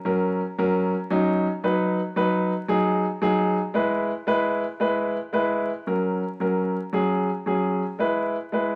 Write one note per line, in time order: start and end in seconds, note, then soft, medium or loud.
0.05 0.40 F#3 medium
0.05 0.40 C#4 medium
0.05 0.40 A#4 medium
0.58 0.93 F#3 medium
0.58 0.93 C#4 medium
0.58 0.93 A#4 medium
1.10 1.46 F#3 medium
1.10 1.46 C#4 medium
1.10 1.46 D#4 loud
1.64 1.99 F#3 medium
1.64 1.99 D#4 medium
1.64 1.99 B4 medium
2.16 2.51 F#3 medium
2.16 2.52 D#4 medium
2.16 2.52 B4 medium
2.68 3.04 F#3 medium
2.68 3.04 D#4 medium
2.68 3.04 G#4 loud
3.22 3.57 F#3 medium
3.22 3.57 D#4 medium
3.22 3.57 G#4 loud
3.74 4.10 G#3 medium
3.74 4.10 E4 medium
3.74 4.10 B4 medium
4.27 4.63 G#3 medium
4.27 4.63 E4 medium
4.27 4.63 B4 loud
4.80 5.16 G#3 medium
4.80 5.16 E4 medium
4.80 5.16 B4 medium
5.33 5.69 G#3 medium
5.33 5.69 E4 medium
5.33 5.69 B4 medium
5.87 6.22 F#3 medium
5.87 6.22 C#4 medium
5.87 6.23 A#4 medium
6.40 6.75 F#3 medium
6.40 6.76 C#4 medium
6.40 6.76 A#4 medium
6.93 7.28 F#3 medium
6.93 7.29 C#4 medium
6.93 7.29 G#4 medium
7.46 7.81 F#3 medium
7.46 7.82 C#4 medium
7.46 7.82 G#4 medium
7.99 8.34 G#3 medium
7.99 8.35 E4 medium
7.99 8.35 B4 medium
8.52 8.75 G#3 medium
8.52 8.75 E4 medium
8.52 8.75 B4 medium